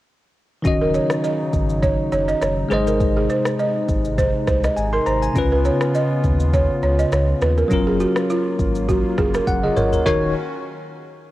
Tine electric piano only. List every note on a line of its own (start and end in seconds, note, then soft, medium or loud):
0.62 2.66 D#3 medium
0.62 2.66 C#4 medium
0.62 2.67 F#4 medium
0.67 2.68 D#5 medium
2.69 5.01 G#3 medium
2.69 5.02 G#4 medium
2.69 5.03 C5 medium
2.74 5.04 D#5 medium
4.76 4.92 G#5 medium
4.93 5.05 C6 medium
5.06 5.22 A#5 medium
5.22 5.50 G#5 medium
5.33 7.66 C#3 medium
5.33 7.67 C#4 medium
5.33 7.67 F4 medium
5.38 7.68 B4 medium
7.68 10.01 F#3 medium
7.68 10.02 C#4 medium
7.68 10.03 F4 medium
7.73 9.45 A#4 medium
9.47 9.63 F#5 medium
9.64 9.76 D#5 medium
9.77 9.92 C#5 medium
9.93 10.21 A#4 medium
10.06 10.33 D#3 medium
10.06 10.33 D#4 medium
10.06 10.33 F#4 medium
10.06 10.33 C#5 medium